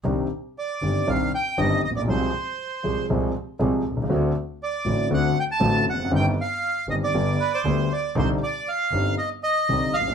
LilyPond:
<<
  \new Staff \with { instrumentName = "Bandoneon" } { \time 4/4 \key c \minor \tempo 4 = 118 r4 d''4 f''8 g''8 ees''8 ees''16 d''16 | c''2 r2 | r4 d''4 fis''8 g''16 a''8. fis''8 | g''8 f''4 ees''16 d''8. b'16 c''8. d''8 |
c''8 d''8 f''4 ees''8 ees''4 f''8 | }
  \new Staff \with { instrumentName = "Grand piano" } { \clef bass \time 4/4 \key c \minor <c, c ees c' d' g'>8 r4 <g,, g, ees c' d' g'>8 <c, c ees c' d' g'>8 r8 <g,, g, ees c' d' g'>8 r32 a,,32 bes,,32 b,,32 | <c, c f aes c' aes'>8 r4 <c, c f aes c' aes'>8 <c, c f aes c' aes'>8 r8 <c, c f aes c' aes'>8 r32 b,,32 c,32 des,32 | <d, d a c' fis'>8 r4 <a,, a, d a c' fis'>8 <d, d a c' fis'>8 r8 <a,, a, d a c' fis'>8 r32 e,32 f,32 fis,32 | <g,, g, ees g c' g'>8 r4 <g,, g, ees g c' g'>8 <g,, g, d g b g'>8 r8 <d, d g b g'>8 r8 |
<c, c d g c' ees'>8 r4 <g,, g, d g c' ees'>8 r4 <c, c d g c' ees'>8 r32 a,,32 bes,,32 r32 | }
  \new Staff \with { instrumentName = "Double bass" } { \clef bass \time 4/4 \key c \minor c,8 r4 g,,8 c,8 r8 g,,8 bes,,8 | c,8 r4 c,8 c,8 r8 c,8 c,8 | d,8 r4 a,,8 d,8 r8 a,,8 f,,8 | g,,8 r4 g,,8 g,,8 r8 d,8 r8 |
c,8 r4 g,,8 r4 c,8 bes,,8 | }
>>